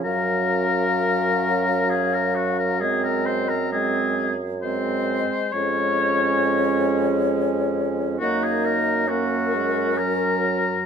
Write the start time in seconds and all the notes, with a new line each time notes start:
0.04 F#2 F#3 C#4 A#4 F5
1.90 G#4
2.13 A#4
2.35 F#4
2.59 A#4
2.80 G#3 C4 G#4 D#5
3.04 A#4
3.26 C5
3.48 A#4
3.72 G#3 C4 G#4 D#5
4.62 G#3 C4 C5 D#5
5.52 F2 G#3 C#4 C#5
8.20 F#2 A#3 D#4 F#4 D#5
8.43 G#4
8.65 A#4
9.08 A#3 C#4 F#4 A#4
9.54 G#3
9.98 F#3 A#4